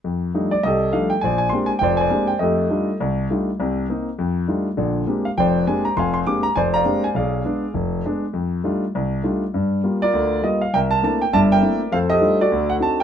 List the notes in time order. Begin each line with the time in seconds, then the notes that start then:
0.04 F2
0.34 F3 G3 A3 D4 D#4
0.51 D5
0.63 C2 G4 A4 D#5
0.92 F3 G3 A3 D4 D#4 F5
1.10 G5
1.21 A#1 C5 D5 G#5
1.38 G#5
1.49 G#3 A#3 C4 D4 G4 C6
1.66 G#5
1.79 F1 F2 G5
1.83 C5 D5
1.97 G#5
2.01 C5 D5
2.10 G#3 A#3 C4 D4 G4
2.27 G5
2.39 F2 A3 G4 A4 D#5
2.70 G3 A3 D4 D#4 F4
3.00 C2
3.30 G3 A3 D4 D#4 F4
3.60 C2 C3
3.89 A#3 C4 D#4
4.19 F2
4.48 G3 A3 D4 D#4 F4
4.77 A#1 D3
5.07 G#3 A#3 C4 D4 G4
5.25 F5
5.37 F1 F2 C5 D5 G5
5.67 G#3 A#3 C4 D4 G4 G#5
5.85 A#5
5.97 F1 F2 F5 G#5 C6
6.14 C6
6.26 G#3 A#3 C4 D4 G4 D6
6.43 A#5
6.56 F1 C5 D5 G#5
6.74 D5 F5 A#5
6.85 G#3 A#3 C4 D4 G4
7.04 G#5
7.15 B1 G#4 D5 F5
7.44 G#3 B3 D4
7.74 F1
8.05 G#3 B3 D4
8.33 F2
8.64 G3 A3 D4 D#4 F4
8.95 C2
9.23 G3 A3 D4 D#4 F4
9.54 G2
9.83 G3 A#3 F4
10.02 F4 A#4 D5
10.13 D2
10.42 G3 A#3 F4 D#5
10.61 F5
10.74 C2 A#4 E5 G5
10.91 A5
11.02 A3 A#3 C4 D4 E4 A5
11.22 G5
11.33 G1 G2 D5 E5 A5
11.52 A#4 E5 G5
11.62 A3 A#3 C4 D4 E4
11.92 F2 A4 C5 F5
12.10 G4 A4 D#5
12.21 G3 A3 D4 D#4 F4
12.41 F#4 A4 D5
12.52 D2
12.70 F#5
12.79 C4 D4 D#4 F#4 A5
13.00 G5